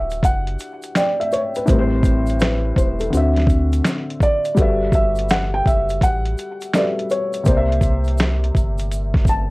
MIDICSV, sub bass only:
0, 0, Header, 1, 2, 480
1, 0, Start_track
1, 0, Tempo, 722892
1, 1117, Time_signature, 4, 2, 24, 8
1, 6309, End_track
2, 0, Start_track
2, 0, Title_t, "Sub bass"
2, 0, Program_c, 0, 38
2, 0, Note_on_c, 0, 26, 83
2, 155, Note_on_c, 0, 30, 94
2, 165, Note_off_c, 0, 26, 0
2, 378, Note_off_c, 0, 30, 0
2, 1120, Note_on_c, 0, 33, 103
2, 1812, Note_off_c, 0, 33, 0
2, 1840, Note_on_c, 0, 28, 84
2, 2060, Note_off_c, 0, 28, 0
2, 2084, Note_on_c, 0, 38, 97
2, 2534, Note_off_c, 0, 38, 0
2, 3041, Note_on_c, 0, 31, 93
2, 3732, Note_off_c, 0, 31, 0
2, 3760, Note_on_c, 0, 30, 84
2, 3980, Note_off_c, 0, 30, 0
2, 3995, Note_on_c, 0, 33, 88
2, 4218, Note_off_c, 0, 33, 0
2, 4960, Note_on_c, 0, 36, 98
2, 5652, Note_off_c, 0, 36, 0
2, 5680, Note_on_c, 0, 31, 86
2, 6309, Note_off_c, 0, 31, 0
2, 6309, End_track
0, 0, End_of_file